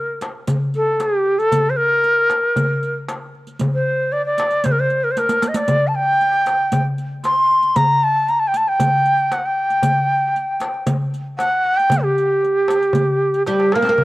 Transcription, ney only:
0, 0, Header, 1, 2, 480
1, 0, Start_track
1, 0, Tempo, 519481
1, 1404, Time_signature, 4, 2, 24, 8
1, 12973, End_track
2, 0, Start_track
2, 0, Title_t, "Ney"
2, 0, Program_c, 0, 77
2, 0, Note_on_c, 0, 70, 89
2, 151, Note_off_c, 0, 70, 0
2, 704, Note_on_c, 0, 69, 89
2, 940, Note_on_c, 0, 67, 85
2, 954, Note_off_c, 0, 69, 0
2, 1282, Note_on_c, 0, 69, 97
2, 1296, Note_off_c, 0, 67, 0
2, 1571, Note_on_c, 0, 72, 65
2, 1585, Note_off_c, 0, 69, 0
2, 1633, Note_on_c, 0, 70, 108
2, 1647, Note_off_c, 0, 72, 0
2, 2722, Note_off_c, 0, 70, 0
2, 3458, Note_on_c, 0, 72, 74
2, 3809, Note_on_c, 0, 74, 80
2, 3822, Note_off_c, 0, 72, 0
2, 3926, Note_off_c, 0, 74, 0
2, 3933, Note_on_c, 0, 74, 85
2, 4293, Note_on_c, 0, 72, 92
2, 4307, Note_off_c, 0, 74, 0
2, 4357, Note_on_c, 0, 70, 75
2, 4371, Note_off_c, 0, 72, 0
2, 4431, Note_on_c, 0, 72, 85
2, 4445, Note_off_c, 0, 70, 0
2, 4655, Note_on_c, 0, 70, 78
2, 4669, Note_off_c, 0, 72, 0
2, 4722, Note_on_c, 0, 72, 71
2, 4736, Note_off_c, 0, 70, 0
2, 4791, Note_on_c, 0, 70, 83
2, 4805, Note_off_c, 0, 72, 0
2, 5063, Note_on_c, 0, 75, 62
2, 5077, Note_off_c, 0, 70, 0
2, 5136, Note_on_c, 0, 74, 87
2, 5150, Note_off_c, 0, 75, 0
2, 5428, Note_on_c, 0, 81, 59
2, 5441, Note_off_c, 0, 74, 0
2, 5498, Note_on_c, 0, 79, 106
2, 5512, Note_off_c, 0, 81, 0
2, 6321, Note_off_c, 0, 79, 0
2, 6695, Note_on_c, 0, 84, 107
2, 7171, Note_on_c, 0, 82, 92
2, 7185, Note_off_c, 0, 84, 0
2, 7423, Note_on_c, 0, 81, 104
2, 7437, Note_off_c, 0, 82, 0
2, 7662, Note_on_c, 0, 82, 76
2, 7676, Note_off_c, 0, 81, 0
2, 7757, Note_on_c, 0, 81, 81
2, 7771, Note_off_c, 0, 82, 0
2, 7832, Note_on_c, 0, 79, 79
2, 7846, Note_off_c, 0, 81, 0
2, 7917, Note_on_c, 0, 81, 84
2, 7931, Note_off_c, 0, 79, 0
2, 7940, Note_off_c, 0, 81, 0
2, 7940, Note_on_c, 0, 81, 64
2, 8022, Note_on_c, 0, 79, 98
2, 8036, Note_off_c, 0, 81, 0
2, 8619, Note_on_c, 0, 78, 84
2, 8633, Note_off_c, 0, 79, 0
2, 8738, Note_on_c, 0, 79, 86
2, 8751, Note_off_c, 0, 78, 0
2, 10028, Note_off_c, 0, 79, 0
2, 10515, Note_on_c, 0, 78, 102
2, 10873, Note_on_c, 0, 79, 104
2, 10887, Note_off_c, 0, 78, 0
2, 11119, Note_on_c, 0, 67, 82
2, 11133, Note_off_c, 0, 79, 0
2, 12433, Note_off_c, 0, 67, 0
2, 12439, Note_on_c, 0, 67, 86
2, 12691, Note_on_c, 0, 70, 99
2, 12705, Note_off_c, 0, 67, 0
2, 12973, Note_off_c, 0, 70, 0
2, 12973, End_track
0, 0, End_of_file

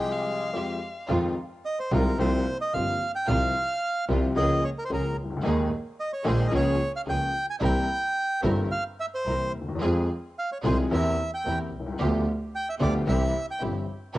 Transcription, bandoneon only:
0, 0, Header, 1, 2, 480
1, 0, Start_track
1, 0, Key_signature, -4, "minor"
1, 0, Tempo, 551471
1, 951, Time_signature, 4, 2, 24, 8
1, 2386, Tempo, 543971
1, 12481, End_track
2, 0, Start_track
2, 0, Title_t, "Bandoneon"
2, 0, Program_c, 0, 23
2, 0, Note_on_c, 0, 56, 86
2, 439, Note_off_c, 0, 56, 0
2, 1439, Note_on_c, 0, 75, 97
2, 1558, Note_off_c, 0, 75, 0
2, 1562, Note_on_c, 0, 72, 79
2, 1668, Note_off_c, 0, 72, 0
2, 1685, Note_on_c, 0, 70, 84
2, 1901, Note_off_c, 0, 70, 0
2, 1911, Note_on_c, 0, 72, 88
2, 2242, Note_off_c, 0, 72, 0
2, 2272, Note_on_c, 0, 75, 101
2, 2380, Note_off_c, 0, 75, 0
2, 2382, Note_on_c, 0, 77, 103
2, 2717, Note_off_c, 0, 77, 0
2, 2750, Note_on_c, 0, 79, 104
2, 2857, Note_on_c, 0, 77, 112
2, 2858, Note_off_c, 0, 79, 0
2, 3538, Note_off_c, 0, 77, 0
2, 3822, Note_on_c, 0, 75, 110
2, 4063, Note_off_c, 0, 75, 0
2, 4063, Note_on_c, 0, 73, 99
2, 4114, Note_off_c, 0, 73, 0
2, 4188, Note_on_c, 0, 70, 95
2, 4236, Note_off_c, 0, 70, 0
2, 4245, Note_on_c, 0, 72, 76
2, 4298, Note_off_c, 0, 72, 0
2, 4320, Note_on_c, 0, 70, 83
2, 4526, Note_off_c, 0, 70, 0
2, 5261, Note_on_c, 0, 75, 92
2, 5365, Note_off_c, 0, 75, 0
2, 5376, Note_on_c, 0, 73, 73
2, 5493, Note_off_c, 0, 73, 0
2, 5506, Note_on_c, 0, 72, 86
2, 5678, Note_on_c, 0, 75, 79
2, 5679, Note_off_c, 0, 72, 0
2, 5731, Note_off_c, 0, 75, 0
2, 5753, Note_on_c, 0, 73, 99
2, 6074, Note_off_c, 0, 73, 0
2, 6109, Note_on_c, 0, 77, 99
2, 6158, Note_off_c, 0, 77, 0
2, 6226, Note_on_c, 0, 79, 112
2, 6551, Note_off_c, 0, 79, 0
2, 6588, Note_on_c, 0, 80, 111
2, 6637, Note_off_c, 0, 80, 0
2, 6715, Note_on_c, 0, 79, 113
2, 7388, Note_off_c, 0, 79, 0
2, 7658, Note_on_c, 0, 77, 101
2, 7766, Note_off_c, 0, 77, 0
2, 7910, Note_on_c, 0, 76, 110
2, 7961, Note_off_c, 0, 76, 0
2, 8039, Note_on_c, 0, 72, 94
2, 8370, Note_off_c, 0, 72, 0
2, 9132, Note_on_c, 0, 77, 87
2, 9235, Note_off_c, 0, 77, 0
2, 9251, Note_on_c, 0, 73, 70
2, 9301, Note_off_c, 0, 73, 0
2, 9370, Note_on_c, 0, 72, 83
2, 9476, Note_off_c, 0, 72, 0
2, 9619, Note_on_c, 0, 76, 95
2, 9945, Note_off_c, 0, 76, 0
2, 9975, Note_on_c, 0, 79, 100
2, 10190, Note_off_c, 0, 79, 0
2, 11045, Note_on_c, 0, 79, 105
2, 11161, Note_off_c, 0, 79, 0
2, 11168, Note_on_c, 0, 76, 88
2, 11218, Note_off_c, 0, 76, 0
2, 11282, Note_on_c, 0, 74, 94
2, 11386, Note_off_c, 0, 74, 0
2, 11516, Note_on_c, 0, 76, 96
2, 11846, Note_off_c, 0, 76, 0
2, 11887, Note_on_c, 0, 79, 96
2, 11990, Note_off_c, 0, 79, 0
2, 12481, End_track
0, 0, End_of_file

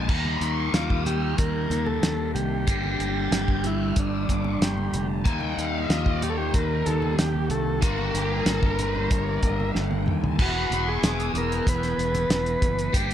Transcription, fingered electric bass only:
0, 0, Header, 1, 2, 480
1, 0, Start_track
1, 0, Tempo, 644468
1, 72, Time_signature, 4, 2, 24, 8
1, 5832, Tempo, 638298
1, 9823, End_track
2, 0, Start_track
2, 0, Title_t, "Fingered electric bass"
2, 0, Program_c, 0, 33
2, 65, Note_on_c, 0, 39, 92
2, 295, Note_off_c, 0, 39, 0
2, 303, Note_on_c, 0, 39, 87
2, 534, Note_off_c, 0, 39, 0
2, 545, Note_on_c, 0, 39, 81
2, 1002, Note_off_c, 0, 39, 0
2, 1028, Note_on_c, 0, 39, 83
2, 1257, Note_off_c, 0, 39, 0
2, 1266, Note_on_c, 0, 39, 80
2, 1496, Note_off_c, 0, 39, 0
2, 1510, Note_on_c, 0, 39, 81
2, 1738, Note_off_c, 0, 39, 0
2, 1750, Note_on_c, 0, 36, 83
2, 1978, Note_off_c, 0, 36, 0
2, 1992, Note_on_c, 0, 31, 93
2, 2220, Note_off_c, 0, 31, 0
2, 2231, Note_on_c, 0, 31, 90
2, 2459, Note_off_c, 0, 31, 0
2, 2465, Note_on_c, 0, 31, 84
2, 2923, Note_off_c, 0, 31, 0
2, 2954, Note_on_c, 0, 31, 89
2, 3181, Note_off_c, 0, 31, 0
2, 3198, Note_on_c, 0, 31, 88
2, 3423, Note_off_c, 0, 31, 0
2, 3431, Note_on_c, 0, 31, 82
2, 3659, Note_off_c, 0, 31, 0
2, 3668, Note_on_c, 0, 29, 84
2, 3914, Note_on_c, 0, 39, 98
2, 3925, Note_off_c, 0, 29, 0
2, 4141, Note_off_c, 0, 39, 0
2, 4152, Note_on_c, 0, 39, 90
2, 4380, Note_off_c, 0, 39, 0
2, 4388, Note_on_c, 0, 39, 86
2, 4844, Note_off_c, 0, 39, 0
2, 4875, Note_on_c, 0, 39, 91
2, 5101, Note_off_c, 0, 39, 0
2, 5113, Note_on_c, 0, 39, 91
2, 5340, Note_off_c, 0, 39, 0
2, 5352, Note_on_c, 0, 39, 85
2, 5579, Note_off_c, 0, 39, 0
2, 5583, Note_on_c, 0, 36, 91
2, 5814, Note_off_c, 0, 36, 0
2, 5831, Note_on_c, 0, 31, 94
2, 6060, Note_off_c, 0, 31, 0
2, 6066, Note_on_c, 0, 31, 93
2, 6298, Note_off_c, 0, 31, 0
2, 6303, Note_on_c, 0, 31, 90
2, 6764, Note_off_c, 0, 31, 0
2, 6797, Note_on_c, 0, 31, 93
2, 7024, Note_off_c, 0, 31, 0
2, 7030, Note_on_c, 0, 31, 85
2, 7261, Note_off_c, 0, 31, 0
2, 7278, Note_on_c, 0, 31, 86
2, 7505, Note_off_c, 0, 31, 0
2, 7512, Note_on_c, 0, 39, 91
2, 7742, Note_off_c, 0, 39, 0
2, 7758, Note_on_c, 0, 28, 102
2, 7951, Note_off_c, 0, 28, 0
2, 7997, Note_on_c, 0, 28, 92
2, 8190, Note_off_c, 0, 28, 0
2, 8236, Note_on_c, 0, 28, 88
2, 8430, Note_off_c, 0, 28, 0
2, 8469, Note_on_c, 0, 28, 87
2, 8665, Note_off_c, 0, 28, 0
2, 8717, Note_on_c, 0, 28, 92
2, 8910, Note_off_c, 0, 28, 0
2, 8954, Note_on_c, 0, 28, 90
2, 9148, Note_off_c, 0, 28, 0
2, 9188, Note_on_c, 0, 28, 84
2, 9384, Note_off_c, 0, 28, 0
2, 9435, Note_on_c, 0, 30, 92
2, 9628, Note_off_c, 0, 30, 0
2, 9675, Note_on_c, 0, 31, 95
2, 9823, Note_off_c, 0, 31, 0
2, 9823, End_track
0, 0, End_of_file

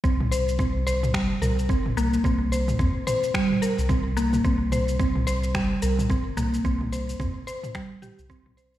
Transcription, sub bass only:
0, 0, Header, 1, 2, 480
1, 0, Start_track
1, 0, Tempo, 550459
1, 37, Time_signature, 4, 2, 24, 8
1, 7662, End_track
2, 0, Start_track
2, 0, Title_t, "Sub bass"
2, 0, Program_c, 0, 38
2, 33, Note_on_c, 0, 36, 93
2, 992, Note_on_c, 0, 31, 81
2, 1006, Note_off_c, 0, 36, 0
2, 1184, Note_off_c, 0, 31, 0
2, 1234, Note_on_c, 0, 36, 91
2, 1474, Note_on_c, 0, 31, 96
2, 1488, Note_off_c, 0, 36, 0
2, 1665, Note_off_c, 0, 31, 0
2, 1712, Note_on_c, 0, 36, 73
2, 1904, Note_off_c, 0, 36, 0
2, 1954, Note_on_c, 0, 36, 102
2, 2395, Note_off_c, 0, 36, 0
2, 2434, Note_on_c, 0, 41, 84
2, 2540, Note_off_c, 0, 41, 0
2, 3298, Note_on_c, 0, 36, 96
2, 3837, Note_off_c, 0, 36, 0
2, 3877, Note_on_c, 0, 36, 97
2, 4836, Note_on_c, 0, 31, 80
2, 4849, Note_off_c, 0, 36, 0
2, 5026, Note_off_c, 0, 31, 0
2, 5081, Note_on_c, 0, 36, 90
2, 5316, Note_on_c, 0, 31, 94
2, 5329, Note_off_c, 0, 36, 0
2, 5506, Note_off_c, 0, 31, 0
2, 5559, Note_on_c, 0, 36, 75
2, 5747, Note_off_c, 0, 36, 0
2, 5796, Note_on_c, 0, 36, 96
2, 6236, Note_off_c, 0, 36, 0
2, 6276, Note_on_c, 0, 41, 87
2, 6381, Note_off_c, 0, 41, 0
2, 7139, Note_on_c, 0, 36, 88
2, 7662, Note_off_c, 0, 36, 0
2, 7662, End_track
0, 0, End_of_file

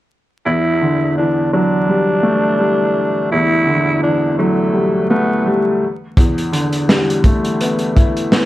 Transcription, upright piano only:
0, 0, Header, 1, 2, 480
1, 0, Start_track
1, 0, Key_signature, 1, "minor"
1, 0, Tempo, 714286
1, 308, Time_signature, 4, 2, 24, 8
1, 5681, End_track
2, 0, Start_track
2, 0, Title_t, "Upright piano"
2, 0, Program_c, 0, 0
2, 306, Note_on_c, 0, 40, 89
2, 424, Control_c, 0, 64, 127
2, 547, Note_on_c, 0, 50, 75
2, 794, Note_on_c, 0, 52, 80
2, 1030, Note_on_c, 0, 54, 85
2, 1270, Note_on_c, 0, 55, 87
2, 1498, Note_on_c, 0, 57, 86
2, 1733, Note_off_c, 0, 55, 0
2, 1743, Note_on_c, 0, 55, 89
2, 1747, Note_off_c, 0, 40, 0
2, 1988, Note_off_c, 0, 50, 0
2, 2231, Note_off_c, 0, 52, 0
2, 2234, Note_on_c, 0, 40, 94
2, 2462, Note_on_c, 0, 50, 75
2, 2469, Note_off_c, 0, 54, 0
2, 2704, Note_on_c, 0, 52, 82
2, 2943, Note_off_c, 0, 57, 0
2, 2949, Note_on_c, 0, 54, 79
2, 3170, Note_off_c, 0, 55, 0
2, 3180, Note_on_c, 0, 55, 84
2, 3430, Note_on_c, 0, 57, 88
2, 3659, Note_off_c, 0, 55, 0
2, 3669, Note_on_c, 0, 55, 86
2, 3671, Note_off_c, 0, 40, 0
2, 3905, Note_off_c, 0, 50, 0
2, 3906, Note_off_c, 0, 52, 0
2, 3909, Note_off_c, 0, 54, 0
2, 3909, Note_off_c, 0, 55, 0
2, 3909, Note_off_c, 0, 57, 0
2, 3917, Control_c, 0, 64, 0
2, 4047, Control_c, 0, 64, 127
2, 4150, Note_on_c, 0, 40, 89
2, 4385, Note_on_c, 0, 50, 80
2, 4630, Note_on_c, 0, 55, 88
2, 4875, Note_on_c, 0, 57, 86
2, 5114, Note_on_c, 0, 59, 92
2, 5346, Note_on_c, 0, 64, 86
2, 5580, Note_off_c, 0, 59, 0
2, 5589, Note_off_c, 0, 40, 0
2, 5591, Note_on_c, 0, 59, 88
2, 5681, Note_off_c, 0, 50, 0
2, 5681, Note_off_c, 0, 55, 0
2, 5681, Note_off_c, 0, 57, 0
2, 5681, Note_off_c, 0, 59, 0
2, 5681, Note_off_c, 0, 64, 0
2, 5681, End_track
0, 0, End_of_file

